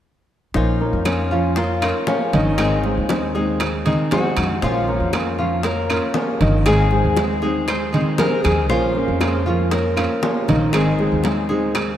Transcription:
0.54 A#1 F3 A#3 C#4 D#4 F4 F5, high bongo, high conga
0.80 A#3 A#4 C#5, high conga
0.93 F2
1.05 F3 A#3 C#4 F4, high bongo, high conga, high timbale, low timbale, claves
1.31 F3 A#3 C#4 F4 F5, high conga
1.56 A#3 F4 A#4 C#5, muted nylon-string guitar stroke, high bongo, high conga, high timbale
1.82 A#3 C#4 D#4 F4 A#4 C#5, high conga, high timbale, claves
2.07 F3 A#3 C#4 F4, high bongo, low bongo, high conga, low timbale
2.33 G1 D#3 D#4 D#5, high conga, high timbale
2.58 G#1 D#3 G#3 C4 D#4 G#4, high bongo, high timbale, claves
2.84 G#3 G#4 C5, high bongo, high conga
2.97 D#2
3.09 G#3 C4 D#4 G#4, high bongo, high conga, high timbale, low timbale
3.35 G#3 C4 D#4 G#4 C5, high bongo, high conga
3.60 muted nylon-string guitar stroke, high bongo, high conga, high timbale, claves
3.85 D#3 G#3 C4 D#4 G#4 D#5, high conga, high timbale
4.11 G#3 C4 D#4 F#4 G#4 C5, high bongo, low bongo, high conga, high timbale, low timbale
4.37 F2, high bongo, high conga, high timbale, claves
4.62 A#1 F3 A#3 C#4 F4 F5, high bongo, high conga
4.88 A#3 A#4 C#5, high conga
5.00 F2
5.13 F3 A#3 C#4 F4, high bongo, high conga, high timbale, low timbale, claves
5.38 F3 A#3 C#4 F4 F5, high conga
5.63 A#3 A#4 C#5, muted nylon-string guitar stroke, high bongo, high conga, high timbale
5.90 A#3 C#4 F4 A#4 C#5, high conga, high timbale, claves
6.14 F3 A#3 C#4 F4, high bongo, low bongo, high conga, low timbale
6.41 G1 D#3 D#4 D#5, high conga, high timbale
6.66 G#1 D#3 G#3 C4 D#4 G#4, high bongo, high timbale, claves
6.91 G#3 G#4 C5, high bongo, high conga
7.05 D#2
7.17 G#3 C4 D#4 G#4, high bongo, high conga, high timbale, low timbale
7.42 G#3 C4 D#4 G#4 C5, high bongo, high conga
7.68 C5, muted nylon-string guitar stroke, high bongo, high conga, high timbale, claves
7.93 D#3 G#3 C4 D#4 G#4 D#5, high timbale
8.18 G#3 C4 D#4 G#4 A#4 C5, high bongo, low bongo, high conga, high timbale, low timbale
8.44 D#2 G#4, high bongo, high conga, high timbale, claves
8.69 A#1 F3 A#3 C#4 F4 C5 F5, high bongo
8.95 A#3 C#4 A#4, high conga
9.08 F2
9.20 F3 A#3 C#4 F4, high bongo, high conga, high timbale, low timbale, claves
9.46 F3 A#3 C#4 F4 F5, high conga
9.71 A#3 A#4 C#5, muted nylon-string guitar stroke, high bongo, high conga, high timbale
9.97 A#3 C#4 F4 A#4 C#5, high conga, high timbale, claves
10.22 F3 A#3 C#4 F4, high bongo, low bongo, high conga, low timbale
10.48 A#1 D#3 D#4 D#5, high conga, high timbale
10.73 G#1 D#3 G#3 C4 D#4 G#4, high bongo, high conga, high timbale, claves
10.99 G#3 G#4 C5, high bongo, high conga
11.12 D#2
11.24 G#3 C4 D#4 G#4, high bongo, high conga, high timbale, low timbale
11.49 G#3 C4 D#4 G#4 C5, high bongo, high conga
11.75 muted nylon-string guitar stroke, high bongo, high conga, high timbale, claves

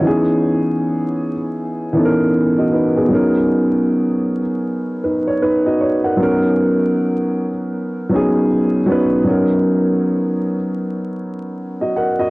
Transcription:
Already playing: C#5
0.01 E3 B3 C#4
0.05 D#4 G#4
1.93 E3 B3 C#4
1.97 D#4 A4
2.05 A#4
2.58 F#4 D#5
2.73 D#4 B4
2.96 B3 G#4
3.08 F#3 B3 C#4
3.13 D#4 A#4
5.04 D#4 B4
5.28 C#5
5.42 D#4 B4
5.66 F#4 D#5
5.81 C#5
6.04 A#4 F#5
6.17 F#3 B3 C#4
6.21 D#4 A#4
8.09 F#3 B3 C#4
8.14 D#4 G#4
8.86 F#3 B3 C#4
8.90 D#4 B4
9.24 F#3 B3 C#4
9.28 D#4 A#4
11.81 F#4 D#5
11.96 A#4 F#5
12.19 F#4 D#5

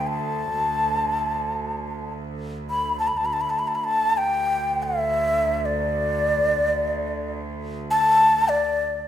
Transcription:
Already playing: D2
0.07 A5
2.70 B5
2.99 A5
3.08 B5
3.17 D2 A5
3.25 B5
3.33 A5
3.41 B5
3.50 A5
3.59 B5
3.68 A5
3.75 B5
3.84 A5
4.17 G5
4.83 E5
5.65 D5
7.91 A5
8.49 D5

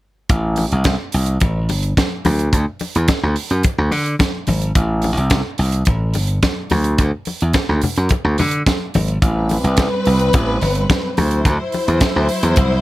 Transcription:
0.29 A1, kick, closed hi-hat
0.56 open hi-hat, muted conga
0.72 C2, closed hi-hat
0.84 kick, snare, closed hi-hat, high conga
1.12 C2, open hi-hat
1.26 closed hi-hat
1.40 A1, kick, closed hi-hat, muted conga
1.69 G1, open hi-hat, muted conga
1.83 closed hi-hat
1.97 kick, snare, closed hi-hat, high conga
2.25 D2, open hi-hat, high conga
2.39 closed hi-hat
2.53 D2, kick, closed hi-hat
2.79 open hi-hat, muted conga
2.95 E2, closed hi-hat
3.08 kick, snare, closed hi-hat, high conga
3.23 D2
3.36 open hi-hat
3.50 F#2, closed hi-hat
3.63 kick, closed hi-hat, muted conga
3.78 D2
3.91 D3, open hi-hat, muted conga
4.06 closed hi-hat
4.19 kick, snare, closed hi-hat, high conga
4.47 G#1, open hi-hat, high conga
4.62 closed hi-hat
4.75 A1, kick, closed hi-hat, muted conga
5.02 open hi-hat, muted conga
5.17 C2, closed hi-hat
5.30 kick, snare, closed hi-hat, high conga
5.58 C2, open hi-hat
5.72 closed hi-hat
5.85 A1, kick, closed hi-hat, muted conga
6.14 G1, open hi-hat, muted conga
6.27 closed hi-hat
6.43 kick, snare, closed hi-hat, high conga
6.70 D2, open hi-hat, high conga
6.84 closed hi-hat
6.98 D2, kick, closed hi-hat
7.25 open hi-hat, muted conga
7.41 E2, closed hi-hat
7.53 kick, snare, closed hi-hat, high conga
7.69 D2
7.81 open hi-hat, low conga
7.96 F#2, closed hi-hat
8.09 kick, closed hi-hat, muted conga
8.25 D2
8.38 D3, open hi-hat, muted conga, low conga
8.51 closed hi-hat
8.66 kick, snare, closed hi-hat, high conga
8.94 G#1, open hi-hat, high conga
9.08 closed hi-hat
9.22 A1 G3 C4 B4, kick, closed hi-hat
9.49 open hi-hat, muted conga
9.64 C2, closed hi-hat
9.77 kick, snare, closed hi-hat, high conga
10.05 C2, open hi-hat
10.19 closed hi-hat
10.33 A1, kick, closed hi-hat, muted conga
10.61 G1, open hi-hat, muted conga
10.75 closed hi-hat
10.90 kick, snare, closed hi-hat, high conga
11.17 D2 F#3 E4 C5, open hi-hat, high conga
11.31 closed hi-hat
11.45 D2, kick, closed hi-hat, muted conga
11.72 open hi-hat, muted conga
11.88 E2, closed hi-hat
12.01 kick, snare, closed hi-hat, high conga
12.16 D2
12.29 open hi-hat
12.43 E2, closed hi-hat
12.56 C2, kick, closed hi-hat, muted conga

